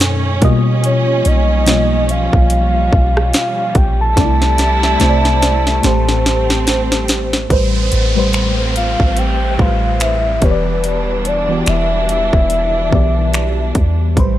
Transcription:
0.00 0.39 F#2 loud
0.00 0.41 B2 medium
0.00 0.39 D#3 medium
0.00 0.38 A3 medium
0.00 0.44 A3 medium
0.00 4.13 C#4 medium
0.00 0.44 D#4 medium
0.00 0.44 A4 loud
0.00 snare loud
0.00 closed hi-hat medium
0.00 downlifter medium
0.41 1.44 B2 loud
0.41 1.22 B2 loud
0.41 4.13 F3 medium
0.41 1.45 G3 medium
0.41 7.46 G3 medium
0.41 1.45 A#3 medium
0.41 1.45 F4 medium
0.41 1.46 D#5 loud
0.41 kick loud
0.41 closed hi-hat medium
0.84 1.29 C#5 medium
0.84 closed hi-hat medium
1.25 2.29 B1 loud
1.25 2.12 D#5 loud
1.25 closed hi-hat medium
1.66 2.95 B2 medium
1.66 2.96 G3 medium
1.66 2.96 A#3 medium
1.66 2.96 F4 medium
1.66 2.97 D#5 medium
1.66 snare loud
1.66 closed hi-hat medium
2.09 3.34 F5 loud
2.09 closed hi-hat medium
2.33 2.90 B1 loud
2.33 kick medium
2.50 closed hi-hat medium
2.93 3.32 B1 medium
2.93 kick medium
3.17 cross-stick loud
3.33 3.78 F5 loud
3.33 snare loud
3.33 closed hi-hat medium
3.75 4.15 A#1 loud
3.75 4.00 G5 loud
3.75 kick loud
3.75 closed hi-hat medium
4.01 7.05 A5 loud
4.16 4.97 C2 loud
4.16 4.84 C3 medium
4.16 5.82 C3 medium
4.16 7.47 A3 medium
4.16 4.84 A3 medium
4.16 5.82 D4 medium
4.16 4.25 D4 medium
4.16 5.82 E4 medium
4.16 4.86 D5 medium
4.16 kick loud
4.16 snare medium
4.16 closed hi-hat medium
4.25 4.88 E4 medium
4.42 snare medium
4.58 snare medium
4.58 closed hi-hat medium
4.83 snare medium
4.99 5.81 C2 loud
4.99 5.83 C3 medium
4.99 5.83 A3 medium
4.99 5.84 E4 medium
4.99 5.09 C5 medium
4.99 snare medium
4.99 closed hi-hat medium
5.10 5.88 D5 loud
5.25 snare medium
5.42 snare medium
5.42 closed hi-hat medium
5.67 snare medium
5.83 7.47 A1 loud
5.83 7.18 A2 loud
5.83 7.18 A3 medium
5.83 7.49 C4 loud
5.83 7.19 G4 medium
5.83 7.20 C5 loud
5.83 snare medium
5.83 closed hi-hat medium
6.09 snare medium
6.26 snare medium
6.50 snare medium
6.67 snare loud
6.67 closed hi-hat medium
6.92 snare medium
7.08 snare loud
7.08 closed hi-hat medium
7.33 snare medium
7.49 7.90 A1 loud
7.49 7.99 A2 medium
7.49 14.13 G3 medium
7.49 8.00 G3 medium
7.49 10.39 A3 medium
7.49 10.39 C4 medium
7.49 8.00 B4 medium
7.49 8.01 C5 medium
7.49 kick loud
7.49 closed hi-hat medium
7.49 downlifter medium
7.92 8.96 A1 loud
7.92 closed hi-hat medium
8.15 9.26 A2 medium
8.15 9.26 G3 medium
8.15 9.27 B4 medium
8.15 9.28 C5 loud
8.33 finger snap loud
8.33 closed hi-hat medium
8.76 9.20 F5 loud
8.76 closed hi-hat medium
9.00 9.57 A1 medium
9.00 kick medium
9.17 9.62 G5 loud
9.17 closed hi-hat medium
9.58 10.39 A1 medium
9.58 10.41 A2 medium
9.58 10.42 G3 medium
9.58 10.43 B4 medium
9.58 10.43 C5 medium
9.58 10.03 F5 loud
9.58 kick medium
10.00 10.45 E5 loud
10.00 finger snap loud
10.00 closed hi-hat medium
10.41 11.63 E1 medium
10.41 11.25 E3 medium
10.41 14.13 E3 medium
10.41 11.25 B3 medium
10.41 14.13 D4 medium
10.41 11.26 G4 medium
10.41 11.29 B4 medium
10.41 10.51 C#5 medium
10.41 kick medium
10.41 closed hi-hat medium
10.51 11.30 D5 medium
10.84 closed hi-hat medium
11.25 11.70 D5 medium
11.25 closed hi-hat medium
11.48 12.59 E3 medium
11.48 12.60 B3 medium
11.48 11.56 F#4 medium
11.48 12.61 D5 medium
11.57 12.63 G4 medium
11.66 12.31 E1 loud
11.66 12.10 E5 medium
11.66 finger snap medium
11.66 closed hi-hat medium
12.09 13.72 E5 loud
12.09 closed hi-hat medium
12.33 12.90 E1 medium
12.33 kick medium
12.50 closed hi-hat medium
12.91 13.72 B1 loud
12.91 13.90 E3 medium
12.91 13.90 B3 medium
12.91 13.91 G4 medium
12.91 13.91 D5 medium
12.91 kick medium
13.34 finger snap loud
13.34 closed hi-hat medium
13.75 14.15 E2 loud
13.75 kick medium
13.75 closed hi-hat medium
14.16 14.39 A1 loud
14.16 14.39 A2 medium
14.16 14.39 G3 medium
14.16 14.39 A3 medium
14.16 14.39 C4 medium
14.16 14.39 B4 medium
14.16 14.39 C5 medium
14.16 kick loud
14.16 closed hi-hat medium

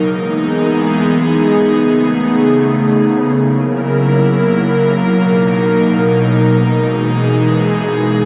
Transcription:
0.00 1.67 E3 medium
0.00 1.67 G#3 medium
0.00 3.31 B3 medium
0.00 3.30 D#4 medium
0.00 3.31 G#4 medium
1.69 4.97 C#3 medium
1.69 3.33 A3 medium
3.34 6.62 F#3 medium
3.34 6.62 A#3 medium
3.34 4.98 E4 medium
3.34 6.62 A#4 medium
5.00 8.25 B2 medium
5.00 8.25 D#4 medium
6.66 8.25 E3 medium
6.66 8.25 G#3 medium
6.66 8.25 G#4 loud

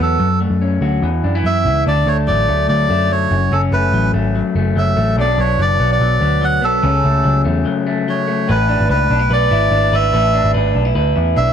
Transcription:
0.00 0.17 E2 medium
0.00 0.19 E3 medium
0.00 0.19 F#3 medium
0.00 0.24 B3 medium
0.00 0.82 F#4 medium
0.00 0.40 A4 medium
0.19 0.46 F#2 medium
0.19 1.03 F#3 medium
0.40 1.07 A3 medium
0.50 0.77 F#2 medium
0.61 1.07 C#4 medium
0.81 0.99 D2 medium
0.81 1.38 F#4 medium
1.02 1.20 E2 medium
1.02 1.87 E3 medium
1.24 1.42 F#2 medium
1.24 1.35 D4 medium
1.35 1.65 E4 soft
1.44 1.66 F#2 medium
1.44 1.91 B3 medium
1.44 1.84 E5 medium
1.65 1.83 C#2 medium
1.65 1.91 E4 medium
1.86 2.04 D2 medium
1.86 3.36 D3 medium
1.86 3.36 D4 medium
1.86 2.09 D5 medium
2.06 2.30 D2 medium
2.06 2.48 A3 medium
2.06 2.17 C#5 medium
2.27 2.46 A1 medium
2.27 2.69 F#3 medium
2.27 2.67 D5 medium
2.49 2.66 D2 medium
2.49 2.90 A3 medium
2.69 2.87 D2 medium
2.69 3.10 F#3 medium
2.69 3.12 D5 medium
2.89 3.25 F#2 medium
2.89 3.36 A3 medium
3.10 3.93 F#3 medium
3.10 3.54 C#5 medium
3.31 3.49 F#1 medium
3.31 3.51 F#2 medium
3.51 3.69 F#1 medium
3.51 5.18 F#2 medium
3.51 5.18 C#4 medium
3.51 3.62 A4 medium
3.71 3.90 F#1 loud
3.71 4.13 A3 medium
3.71 4.11 B4 medium
3.92 4.10 A1 medium
3.92 4.35 F#3 medium
4.13 4.40 G#1 medium
4.13 4.55 A3 medium
4.35 4.76 F#3 medium
4.55 4.73 F#1 medium
4.55 4.96 A3 medium
4.75 4.93 F#1 medium
4.75 5.59 F#3 medium
4.75 5.16 E5 medium
4.97 5.14 A1 medium
4.97 5.22 A3 medium
5.16 5.35 B1 medium
5.16 6.83 B2 medium
5.16 6.83 D4 medium
5.16 5.40 D5 medium
5.38 5.56 B1 medium
5.38 5.78 B3 medium
5.38 5.60 C#5 medium
5.58 5.76 F#1 medium
5.58 6.01 F#3 medium
5.58 5.91 D5 loud
5.79 5.97 B1 medium
5.79 6.20 B3 medium
5.92 6.44 D5 medium
6.00 6.18 B1 medium
6.00 6.41 F#3 medium
6.21 6.62 D2 medium
6.21 6.61 B3 medium
6.41 6.87 F#3 medium
6.41 6.64 F#5 loud
6.62 6.80 B1 medium
6.62 6.87 B3 medium
6.62 7.42 A4 medium
6.83 7.01 C#2 medium
6.83 8.48 C#3 medium
6.83 8.48 C#4 medium
7.04 7.22 C#2 medium
7.04 7.43 A3 medium
7.24 7.42 C#2 medium
7.24 7.64 F#3 medium
7.44 7.63 E2 medium
7.44 7.85 A3 medium
7.66 8.07 F#3 medium
7.86 8.26 A3 medium
8.08 8.53 F#3 medium
8.08 8.51 C#5 medium
8.28 8.52 A3 medium
8.48 8.75 A1 medium
8.48 10.12 A2 medium
8.48 8.88 B4 medium
8.69 9.09 D4 medium
8.80 8.88 G#1 medium
8.89 9.07 C#2 medium
8.89 9.29 B4 medium
8.89 9.32 B4 medium
9.10 9.28 B1 medium
9.10 9.19 D4 medium
9.19 9.50 E4 medium
9.30 9.48 B1 medium
9.30 9.92 B4 medium
9.30 9.95 D5 loud
9.51 9.69 G#1 medium
9.51 10.74 E4 medium
9.70 9.89 G#1 loud
9.70 10.33 D4 medium
9.92 10.10 G#1 medium
9.92 10.12 B4 medium
9.92 10.51 E5 loud
10.13 10.39 A1 loud
10.13 11.53 A2 medium
10.13 10.53 B4 medium
10.34 10.74 D4 medium
10.44 10.53 G#1 medium
10.54 10.72 G#1 medium
10.54 10.94 B4 medium
10.75 10.93 B1 medium
10.75 10.85 D4 medium
10.85 11.14 E4 medium
10.95 11.13 D2 loud
10.95 11.53 B4 medium
11.16 11.34 E2 medium
11.16 11.53 E4 medium
11.36 11.53 B1 medium
11.36 11.53 D4 medium
11.36 11.53 E5 medium

